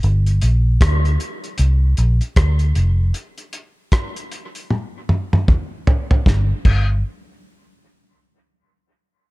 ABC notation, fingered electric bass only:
X:1
M:4/4
L:1/16
Q:"Swing 16ths" 1/4=77
K:Gm
V:1 name="Fingered electric bass" clef=bass
G,,,2 B,,,2 D,,2 z2 C,,2 B,,, z D,,2 F,,,2 | z16 | G,,,2 G,,,2 z12 |]